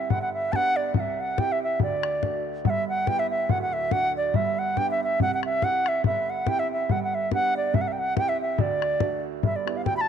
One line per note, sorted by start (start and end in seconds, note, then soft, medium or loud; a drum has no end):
0.00 0.12 E5 medium
0.10 0.92 G1 medium
0.10 0.93 G2 medium
0.10 0.21 F#5 medium
0.10 bodhran medium
0.22 0.33 F#5 medium
0.34 0.54 E5 medium
0.52 0.94 B3 soft
0.52 0.94 D4 soft
0.52 0.94 G4 medium
0.52 0.78 F#5 loud
0.52 0.57 A5 loud
0.52 bodhran medium
0.76 0.95 D5 medium
0.94 1.76 C2 medium
0.94 1.78 C3 medium
0.94 1.01 F#5 medium
0.94 bodhran medium
1.00 1.22 E5 medium
1.20 1.41 F#5 medium
1.38 1.79 C4 medium
1.38 1.79 E4 medium
1.38 1.79 G4 medium
1.38 1.54 G5 loud
1.38 bodhran loud
1.52 1.62 E5 medium
1.63 1.80 E5 medium
1.80 2.61 D2 medium
1.80 2.62 D3 medium
1.80 2.43 D5 medium
1.80 bodhran medium
2.03 bodhran medium
2.22 2.64 A3 soft
2.22 2.64 D4 soft
2.22 2.64 F#4 soft
2.22 bodhran medium
2.65 3.46 G1 medium
2.65 3.47 G2 medium
2.65 2.71 F#5 medium
2.65 bodhran medium
2.70 2.87 E5 loud
2.89 3.09 F#5 loud
3.06 3.48 B3 medium
3.06 3.48 E4 soft
3.06 3.49 G4 medium
3.06 3.21 G5 loud
3.06 bodhran medium
3.19 3.30 E5 loud
3.30 3.52 E5 medium
3.49 4.30 D1 medium
3.49 4.32 D2 medium
3.49 3.61 F#5 loud
3.49 bodhran medium
3.62 3.75 F#5 medium
3.73 3.93 E5 loud
3.91 4.33 A3 medium
3.91 4.33 D4 soft
3.91 4.33 F#4 medium
3.91 4.15 F#5 loud
3.91 bodhran medium
4.17 4.37 D5 medium
4.34 5.15 G1 medium
4.34 5.17 G2 medium
4.34 4.60 E5 medium
4.34 bodhran medium
4.59 4.79 F#5 loud
4.77 5.18 B3 soft
4.77 5.18 D4 medium
4.77 5.18 G4 medium
4.77 4.89 G5 loud
4.77 bodhran medium
4.91 5.01 E5 medium
5.03 5.20 E5 medium
5.20 6.01 C2 medium
5.20 6.02 C3 medium
5.20 5.32 F#5 loud
5.20 bodhran medium
5.34 5.44 F#5 medium
5.43 5.65 E5 loud
5.43 bodhran medium
5.62 6.03 C4 medium
5.62 6.04 E4 soft
5.62 6.04 G4 medium
5.62 5.90 F#5 loud
5.62 bodhran medium
5.86 6.05 E5 medium
5.86 bodhran medium
6.04 6.86 G1 medium
6.04 6.87 G2 medium
6.04 6.31 E5 medium
6.04 bodhran loud
6.30 6.50 F#5 medium
6.47 6.88 C4 medium
6.47 6.88 E4 medium
6.47 6.88 G4 medium
6.47 6.61 G5 loud
6.47 bodhran medium
6.59 6.70 E5 medium
6.72 6.93 E5 medium
6.89 7.70 G1 medium
6.89 7.72 G2 medium
6.89 7.02 F#5 loud
6.89 bodhran medium
7.04 7.16 F#5 medium
7.15 7.32 E5 medium
7.31 7.73 B3 medium
7.31 7.73 D4 soft
7.31 7.73 G4 medium
7.31 7.55 F#5 loud
7.31 bodhran medium
7.57 7.76 D5 medium
7.74 8.54 C2 medium
7.74 8.56 C3 medium
7.74 7.83 E5 medium
7.74 bodhran medium
7.81 7.89 F#5 medium
7.88 7.94 E5 medium
7.92 8.01 G5 medium
7.99 8.17 F#5 medium
8.16 8.57 C4 medium
8.16 8.57 E4 soft
8.16 8.58 G4 medium
8.16 8.30 G5 loud
8.16 bodhran medium
8.29 8.40 E5 medium
8.42 8.62 E5 medium
8.58 9.39 D2 medium
8.58 9.40 D3 medium
8.58 9.22 D5 medium
8.58 bodhran medium
8.82 bodhran medium
9.00 9.42 A3 medium
9.00 9.42 D4 soft
9.00 9.42 F#4 medium
9.00 bodhran medium
9.43 10.08 G1 medium
9.43 9.85 G2 medium
9.43 9.57 E5 medium
9.43 bodhran medium
9.56 9.78 D5 medium
9.66 10.00 B3 soft
9.66 10.00 E4 soft
9.66 10.00 G4 medium
9.66 bodhran medium
9.77 9.85 F5 medium
9.85 10.08 D2 medium
9.85 9.96 G5 loud
9.85 bodhran medium
9.97 10.02 B5 loud
10.01 10.08 A5 loud